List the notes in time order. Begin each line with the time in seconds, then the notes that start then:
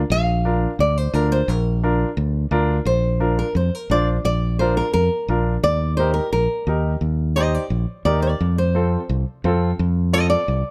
0.10 A#1 F5
0.45 D4 F4 A#4
0.79 D2 D5
0.98 C5
1.14 D2 D4 F4 A#4
1.32 C5
1.48 A#1 A#4
1.83 D4 F4 A#4
2.17 D2
2.51 D2 D4 F4 A#4
2.85 A#1 C5
3.20 D4 F4 A#4
3.39 A#4
3.55 F2 C5
3.75 A#4
3.90 A#1 D4 F4 C5 D5
4.25 A#1 D5
4.59 D4 F4 A#4 C5
4.77 A#4
4.93 F2 A#4
5.28 A#1 D4 F4 A#4
5.63 D#2 D5
5.97 D#4 G4 A#4 C5
6.14 A#4
6.32 A#1 A#4
6.67 D#2 D#4 G4 A#4
7.01 D#2
7.36 D#4 G4 C5 D#5
7.54 D5
7.70 A#1
8.05 D#2 D#4 G4 A#4 D5
8.22 D5
8.41 F2
8.58 C5
8.75 C4 F4 A4
9.09 C2
9.44 F2 C4 F4 A4
9.79 F2
10.13 C4 F4 A4 D#5
10.30 D5
10.48 C2